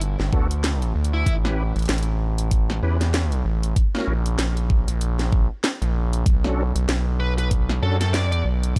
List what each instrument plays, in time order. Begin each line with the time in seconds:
Already playing: analog synth bass G1
0.01 closed hi-hat
0.20 analog synth bass G1, snare
0.33 analog synth bass D2, tonewheel organ B3 D4 F#4 A4, kick
0.51 closed hi-hat
0.64 snare, closed hi-hat
0.82 closed hi-hat
0.95 analog synth bass D2
1.04 closed hi-hat
1.14 lead electric guitar E4
1.26 analog synth bass A1, kick, closed hi-hat
1.45 tonewheel organ C#4 E4 G4 B4, snare
1.76 analog synth bass A1, closed hi-hat
1.79 closed hi-hat
1.82 closed hi-hat
1.86 snare, closed hi-hat
1.89 analog synth bass A1, closed hi-hat
1.94 closed hi-hat
1.98 closed hi-hat
2.03 closed hi-hat
2.38 closed hi-hat
2.51 kick, closed hi-hat
2.70 snare
2.83 analog synth bass E2, tonewheel organ C#4 E4 G4 B4
3.01 snare, closed hi-hat
3.14 snare, closed hi-hat
3.32 closed hi-hat
3.45 analog synth bass A1
3.63 closed hi-hat
3.76 kick, closed hi-hat
3.95 tonewheel organ C#4 E4 F#4 A#4, snare
3.96 snare
3.98 snare
4.00 snare
4.06 analog synth bass A#1, snare
4.26 closed hi-hat
4.38 analog synth bass A#1, snare, closed hi-hat
4.57 closed hi-hat
4.70 kick
4.88 analog synth bass A#1, closed hi-hat
5.01 closed hi-hat
5.19 snare, closed hi-hat
5.32 kick
5.64 snare, closed hi-hat
5.82 analog synth bass A#1, closed hi-hat
6.13 closed hi-hat
6.26 analog synth bass B1, kick, closed hi-hat
6.44 tonewheel organ C#4 D4 F#4 A4, snare
6.75 analog synth bass B1, closed hi-hat
6.89 analog synth bass B1, snare, closed hi-hat
7.20 lead electric guitar B4
7.38 lead electric guitar B4, closed hi-hat
7.51 kick, closed hi-hat
7.69 snare
7.82 analog synth bass F#2, tonewheel organ C#4 D4 F#4 A4, lead electric guitar A4
8.01 lead electric guitar A4, snare, closed hi-hat
8.14 lead electric guitar D5, snare, closed hi-hat
8.26 analog synth bass F2
8.32 lead electric guitar D5, closed hi-hat
8.45 analog synth bass B1
8.63 closed hi-hat